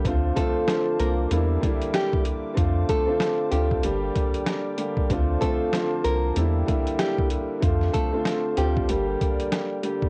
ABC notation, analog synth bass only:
X:1
M:4/4
L:1/8
Q:"Swing 16ths" 1/4=95
K:Dm
V:1 name="Analog synth bass" clef=bass
D,, z2 C,, E,, z3 | F,, z2 D,, G,,, z3 | D,, z2 C,, E,, z3 | F,, z2 D,, G,,, z3 |]